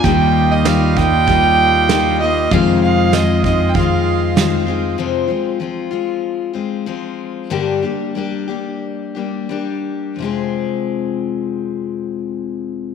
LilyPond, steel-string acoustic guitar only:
\new Staff \with { instrumentName = "Steel-string acoustic guitar" } { \time 4/4 \key f \dorian \tempo 4 = 96 <ees g bes ees' f'>4 <g bes ees' f'>8 <bes ees' f'>8 <g bes ees' f'>4 <g bes ees' f'>8 <bes ees' f'>8 | <f, c ees aes c' f'>4 <ees aes c' f'>8 <ees aes c' f'>8 <ees aes c' f'>4 <ees aes c' f'>8 <ees aes c' f'>8 | <f, c f aes c' f'>8 <f aes c' f'>8 <f aes c' f'>8 <f aes c' f'>4 <f aes c' f'>8 <f aes c' f'>4 | <g, d g bes d' g'>8 <g bes d' g'>8 <g bes d' g'>8 <g bes d' g'>4 <g bes d' g'>8 <g bes d' g'>4 |
<f, c f aes c' aes'>1 | }